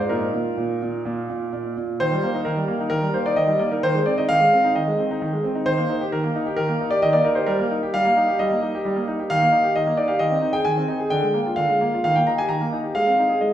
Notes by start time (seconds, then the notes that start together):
0.09 A#2 D#4 A#4
0.34 A#2
0.57 A#2
0.82 A#2
1.05 A#2
1.30 A#2
1.53 A#2
1.77 A#2
2.00 D#3 C5
2.12 G3
2.23 A#3
2.34 D#4
2.45 D#3 A#4
2.57 G3
2.68 A#3
2.80 D#4
2.90 D#3 A#4
3.03 G3
3.14 A#3 C5
3.26 D#4 D5
3.36 D#3 D#5
3.48 G3
3.59 A#3 D5
3.72 D#4 A#4
3.83 D#3 C5
3.95 G#3
4.06 C4 D5
4.18 D#4 D#5
4.29 D#3 F5
4.40 G#3
4.53 C4
4.64 D#4
4.75 D#3 D#5
4.88 G#3
4.99 C4
5.11 D#4
5.22 D#3
5.33 G#3
5.44 C4
5.55 D#4
5.66 D#3 C5
5.78 A#3
5.89 D#4
6.01 G4
6.12 D#3 A#4
6.24 A#3
6.35 D#4
6.46 G4
6.57 D#3 A#4
6.69 A#3
6.80 D#4
6.90 G4 D5
7.02 D#3 D#5
7.13 A#3 D5
7.25 D#4 A#4
7.35 G4 C5
7.46 G3 A#4
7.60 A#3
7.71 D#4
7.83 G4
7.94 G3 F5
8.05 A#3
8.17 D#4
8.28 G4
8.39 G3 D#5
8.52 A#3
8.62 D#4
8.75 G4
8.85 G3
8.96 A#3
9.08 D#4
9.20 G4
9.30 D#3 F5
9.42 A#3
9.52 D#4
9.63 G4
9.75 D#3 D#5
9.87 A#3
9.97 D#4 D5
10.08 G4 F5
10.19 D#3 D#5
10.30 C4
10.42 D#4
10.53 G#4 G5
10.65 D#3 G#5
10.77 C4
10.88 D#4
11.00 G#4
11.10 D3 G5
11.23 G#3
11.34 A#3
11.46 F4
11.56 D3 F5
11.70 G#3
11.81 A#3
11.94 F4
12.04 D#3 F5
12.16 A#3 G5
12.27 D#4 A#5
12.38 G4 G#5
12.49 D#3 A#5
12.61 A#3
12.73 D#4
12.84 G4
12.95 G#3 F5
13.07 C4
13.19 D#4
13.29 G#4
13.41 G#3 D#5